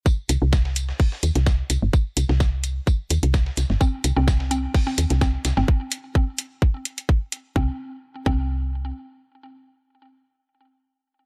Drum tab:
HH |--x---x-o-xx--x-|--x---x---xx--x-|--x---x-o-xx--x-|--x---x---xx--x-|
TB |x-x-x-x---x-x-x-|x-x-x-x-x-x-x-x-|x-x-x-x---x-x-x-|----------------|
SD |----oo-o-o-oo---|---oo-------oooo|----oo---o-oo-oo|----------------|
BD |o---o---o---o---|o---o---o---o---|o---o---o---o---|o---o---o---o---|

HH |----------------|----------------|
TB |----------------|----------------|
SD |----------------|----------------|
BD |o-----o---------|----------------|